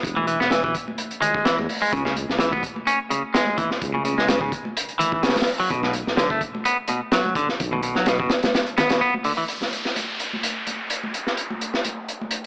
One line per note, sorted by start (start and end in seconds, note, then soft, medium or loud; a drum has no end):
0.03 0.36 E1 medium
0.03 kick loud
0.03 closed hi-hat medium
0.17 0.26 E3 medium
0.17 high conga medium
0.27 0.38 E3 medium
0.27 closed hi-hat medium
0.40 0.66 E1 loud
0.40 0.50 B3 medium
0.40 snare soft
0.51 0.63 E3 loud
0.51 snare loud
0.51 closed hi-hat medium
0.51 high conga medium
0.64 0.73 B1 medium
0.64 0.74 E3 medium
0.64 kick medium
0.75 kick medium
0.75 closed hi-hat medium
0.88 high conga medium
0.98 closed hi-hat medium
1.11 closed hi-hat soft
1.21 1.44 G#3 loud
1.21 closed hi-hat medium
1.21 high conga medium
1.21 low conga medium
1.34 kick medium
1.45 1.57 E3 loud
1.45 snare loud
1.45 closed hi-hat medium
1.58 1.67 E2 medium
1.58 high conga medium
1.69 open hi-hat medium
1.82 1.91 G#3 medium
1.93 2.26 C#2 medium
1.93 2.04 C#3 medium
1.93 kick loud
1.93 closed hi-hat medium
2.05 2.15 C#3 medium
2.05 snare soft
2.05 high conga medium
2.16 closed hi-hat medium
2.29 2.54 C#2 loud
2.29 snare soft
2.39 2.51 E3 loud
2.39 snare loud
2.39 closed hi-hat medium
2.39 high conga medium
2.52 2.62 G#1 medium
2.52 2.63 B3 medium
2.52 kick loud
2.63 kick medium
2.63 closed hi-hat medium
2.76 high conga medium
2.87 2.98 C#4 medium
2.87 closed hi-hat medium
3.10 3.22 C#3 medium
3.10 closed hi-hat medium
3.10 high conga medium
3.34 3.57 G#3 medium
3.34 snare loud
3.34 closed hi-hat medium
3.47 high conga loud
3.58 3.69 E3 medium
3.58 kick medium
3.58 closed hi-hat medium
3.71 snare soft
3.81 4.15 C#2 medium
3.81 kick loud
3.81 closed hi-hat medium
3.94 4.04 C#3 medium
3.94 high conga medium
4.05 4.16 C#3 medium
4.05 closed hi-hat medium
4.18 4.42 C#2 loud
4.18 4.27 G#3 medium
4.18 snare soft
4.28 4.40 C#3 loud
4.28 snare loud
4.28 closed hi-hat medium
4.28 high conga medium
4.41 4.50 G#1 medium
4.41 4.52 C#3 medium
4.41 kick medium
4.52 kick medium
4.52 closed hi-hat medium
4.65 high conga medium
4.77 closed hi-hat medium
4.89 closed hi-hat soft
4.99 5.22 E3 loud
4.99 closed hi-hat medium
4.99 high conga medium
4.99 low conga medium
5.12 kick medium
5.23 5.35 C#3 loud
5.23 snare medium
5.23 closed hi-hat medium
5.29 snare medium
5.29 closed hi-hat medium
5.36 snare medium
5.36 closed hi-hat medium
5.36 high conga medium
5.41 snare medium
5.41 closed hi-hat medium
5.47 open hi-hat medium
5.60 5.69 F#3 medium
5.70 6.03 B1 loud
5.70 5.82 B2 loud
5.70 kick loud
5.70 closed hi-hat medium
5.83 5.93 B2 loud
5.83 snare soft
5.83 high conga medium
5.93 closed hi-hat medium
6.07 6.32 B1 loud
6.07 snare soft
6.17 6.29 D3 loud
6.17 snare loud
6.17 closed hi-hat medium
6.17 high conga medium
6.30 6.39 F#1 medium
6.30 6.41 A3 medium
6.30 kick medium
6.41 kick medium
6.41 closed hi-hat medium
6.55 high conga medium
6.65 6.76 B3 medium
6.65 closed hi-hat medium
6.88 7.00 B2 medium
6.88 closed hi-hat medium
6.88 high conga medium
7.12 7.35 F#3 medium
7.12 snare loud
7.12 closed hi-hat medium
7.26 high conga medium
7.35 7.47 D3 loud
7.35 kick medium
7.35 closed hi-hat medium
7.49 snare soft
7.60 7.93 B1 medium
7.60 kick medium
7.60 closed hi-hat medium
7.72 7.82 B2 medium
7.72 high conga medium
7.72 low conga medium
7.83 7.94 B2 medium
7.83 closed hi-hat medium
7.95 8.21 B1 loud
7.95 8.05 F#3 medium
7.95 snare soft
8.06 8.18 B2 loud
8.06 snare loud
8.06 closed hi-hat medium
8.06 high conga medium
8.20 8.29 F#1 medium
8.20 8.30 B2 loud
8.20 kick loud
8.30 snare medium
8.30 closed hi-hat medium
8.43 snare medium
8.43 closed hi-hat medium
8.43 high conga medium
8.55 snare loud
8.55 closed hi-hat medium
8.67 closed hi-hat soft
8.78 8.90 B3 loud
8.78 snare loud
8.78 closed hi-hat medium
8.78 high conga medium
8.78 low conga medium
8.89 9.00 B2 medium
8.89 snare loud
8.89 closed hi-hat medium
9.01 9.13 B3 loud
9.14 high conga medium
9.24 9.32 D3 medium
9.24 open hi-hat medium
9.37 9.43 E3 medium
9.48 closed hi-hat medium
9.48 downlifter medium
9.61 snare soft
9.61 high conga medium
9.73 closed hi-hat medium
9.85 snare soft
9.96 closed hi-hat medium
9.96 high conga medium
10.20 closed hi-hat medium
10.33 high conga medium
10.43 closed hi-hat medium
10.67 closed hi-hat medium
10.67 high conga medium
10.90 closed hi-hat medium
11.03 high conga medium
11.14 closed hi-hat medium
11.27 snare soft
11.37 closed hi-hat medium
11.50 high conga medium
11.61 closed hi-hat medium
11.74 snare soft
11.84 closed hi-hat medium
11.84 high conga medium
12.08 closed hi-hat medium
12.21 high conga medium
12.31 closed hi-hat medium